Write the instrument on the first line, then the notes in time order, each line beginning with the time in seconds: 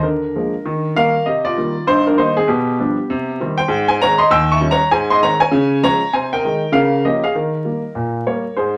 grand piano
0.03 D3 D4 A#4
0.36 F3 G#3 A#3
0.65 D#3
0.95 D#3 G3 A#3 A#4 F5
1.26 C3 G4 D#5
1.45 F4 D5
1.58 D#3 G3 A#3
1.87 G2 D#4 C5
2.07 D4 A#4
2.18 D#3 G3 A#3 D#4 C5
2.37 C4 G#4
2.48 B2 B3 G4
2.79 F3 G3 D4
3.10 C3
3.40 D#3 G3 C4
3.58 C5 G5
3.68 G#2
3.88 C5 G#5
4.01 D#3 G#3 C4 C#5 A#5
4.18 D#5 C6
4.31 D#2 G5 E6
4.52 E5 C#6
4.61 D#3 G3 C#4
4.71 C#5 A#5
4.91 G#2 C5 G#5
5.10 D#5 C6
5.22 D#3 G#3 C4 C#5 A#5
5.40 C#5 G#5
5.51 C#3
5.83 F3 G#3 C#4 C#5 A#5
6.13 C3 C5 G#5
6.33 A#4 G5
6.44 D#3 G#3 D#4
6.72 C#3 A#4 F5
7.05 F3 A#3 C#4 G4 D#5
7.24 G#4 F5
7.35 D#3 D#4 A#4
7.65 G3 A#3
7.95 A#2
8.26 G3 A#3 A#4 C#5
8.57 G#2 G#4 C5